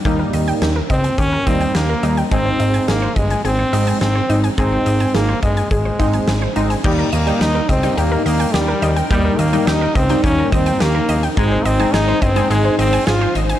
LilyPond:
<<
  \new Staff \with { instrumentName = "Synth arpeggio sound" } { \time 4/4 \key ees \mixolydian \tempo 4 = 106 g'16 bes'16 ees''16 g''16 g'16 bes'16 ees''16 g''16 g'16 bes'16 ees''16 g''16 g'16 bes'16 ees''16 g''16 | aes'16 c''16 ees''16 aes''16 aes'16 c''16 ees''16 aes''16 aes'16 c''16 ees''16 aes''16 aes'16 c''16 ees''16 aes''16 | aes'16 c''16 ees''16 aes''16 aes'16 c''16 ees''16 aes''16 aes'16 c''16 ees''16 aes''16 aes'16 c''16 ees''16 aes''16 | g'16 bes'16 ees''16 g''16 g'16 bes'16 ees''16 g''16 g'16 bes'16 ees''16 g''16 g'16 bes'16 ees''16 g''16 |
g'16 bes'16 ees''16 g''16 g'16 bes'16 ees''16 g''16 g'16 bes'16 ees''16 g''16 g'16 bes'16 ees''16 g''16 | aes'16 c''16 ees''16 aes''16 aes'16 c''16 ees''16 aes''16 aes'16 c''16 ees''16 aes''16 aes'16 c''16 ees''16 aes''16 | }
  \new Staff \with { instrumentName = "String machine" } { \time 4/4 \key ees \mixolydian << { r1 | r1 | r1 | <bes' g''>1~ |
<bes' g''>1 | <c'' aes''>1 | } \\ { r1 | r1 | r1 | ees'1~ |
ees'1~ | ees'1 | } >> }
  \new Staff \with { instrumentName = "Trombone" } { \time 4/4 \key ees \mixolydian r4. c'8 des'8 c'8 bes8. r16 | c'4 bes8 aes8 c'4 c'8. r16 | c'4 bes8 aes8 aes4. r8 | g8 bes8 ees'8 c'8 bes8 bes8 g8. r16 |
g8 bes8 ees'8 c'8 des'8 c'8 bes8. r16 | aes8 c'8 ees'8 c'8 aes8 c'8 f'8 r8 | }
  \new Staff \with { instrumentName = "Synth keys" } { \time 4/4 \key ees \mixolydian <g bes ees'>4~ <g bes ees'>16 r4 r16 <g bes ees'>8 r8 <g bes ees'>16 r16 | <aes c' ees'>4~ <aes c' ees'>16 r4 r16 <aes c' ees'>8 r8 <aes c' ees'>16 r16 | <aes c' ees'>4~ <aes c' ees'>16 r4 r16 <aes c' ees'>8 r8 <aes c' ees'>16 r16 | <g bes ees'>8 r16 <g bes ees'>8 r8 <g bes ees'>4~ <g bes ees'>16 r4 |
<g bes ees'>8 r16 <g bes ees'>8 r8 <g bes ees'>4~ <g bes ees'>16 r4 | <aes c' ees'>8 r16 <aes c' ees'>8 r8 <aes c' ees'>4~ <aes c' ees'>16 r4 | }
  \new Staff \with { instrumentName = "Analog synth bass" } { \clef bass \time 4/4 \key ees \mixolydian ees,8 ees,8 ees,8 des,8 ees,8 ees,8 ees,8 ees,8 | aes,,8 aes,,8 aes,,8 g,,8 aes,,8 aes,,8 aes,,8 aes,,8 | aes,,8 aes,,8 aes,,8 g,,8 aes,,8 aes,,8 aes,,8 aes,,8 | ees,8 ees,8 ees,8 des,8 ees,8 ees,8 ees,8 ees,8 |
ees,8 ees,8 ees,8 des,8 ees,8 ees,8 ees,8 ees,8 | aes,,8 aes,,8 aes,,8 g,,8 aes,,8 aes,,8 aes,,8 aes,,8 | }
  \new DrumStaff \with { instrumentName = "Drums" } \drummode { \time 4/4 <hh bd>8 hh16 hh16 <hh sn>8 <hh bd>16 hh16 <hh bd>8 <hh bd>16 hh16 <hh sn>8 hh16 hh16 | <hh bd>8 hh16 hh16 <hh sn>8 <hh bd>16 hh16 hh8 hh16 hh16 <hh sn>8 hh16 hh16 | <hh bd>8 hh16 hh16 <hh sn>8 <hh bd>16 hh16 <hh bd>8 <hh bd>16 hh16 <hh sn>8 hh16 hh16 | <cymc bd>8 hh16 hh16 <hh sn>8 <hh bd>16 hh16 hh8 hh16 hh16 <hh sn>8 hh16 hh16 |
<hh bd>8 hh16 hh16 <hh sn>8 <hh bd>16 hh16 <hh bd>8 <hh bd>16 hh16 <hh sn>8 hh16 hh16 | <hh bd>8 hh16 hh16 <hh sn>8 <hh bd>16 hh16 hh8 hh16 hh16 <hh sn>8 hh16 hh16 | }
>>